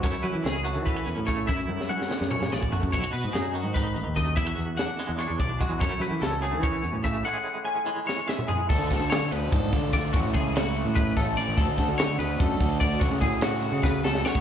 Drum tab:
CC |--------------|--------------|--------------|--------------|
RD |--------------|--------------|--------------|--------------|
HH |x-x-x-x-x-x-x-|x-------------|x-x-x-x-x-x-x-|x-x-x-x-x-x-x-|
SD |----o---------|---o-ooo-oo---|----o---o-----|----o-o-------|
T1 |--------------|--o-o---------|--------------|--------------|
T2 |--------------|--------o-----|--------------|--------------|
FT |--------------|------------o-|--------------|--------------|
BD |o-------o---o-|o----------o-o|o-------o---o-|o---------o-o-|

CC |--------------|--------------|x-------------|--------------|
RD |--------------|--------------|--x-x-x-x-x-x-|x-x-x-x-x-x-x-|
HH |x-x-x-x-x-x-x-|--------------|--------------|--------------|
SD |----o---------|--------o-o---|--o-o-------o-|----o-----o---|
T1 |--------------|--------------|--------------|--------------|
T2 |--------------|-----------o--|--------------|--------------|
FT |--------------|------------o-|--------------|--------------|
BD |o-------o---o-|--------------|o-o-----o-o-o-|o-o-----o-o---|

CC |--------------|--------------|
RD |x-x-x-x-x-x-x-|x-x-x-x-------|
HH |--------------|--------------|
SD |--o-o-o-------|--o-o---o-ooo-|
T1 |--------------|--------------|
T2 |--------------|--------------|
FT |--------------|--------------|
BD |o-o-----o-o-o-|o-o-----o----o|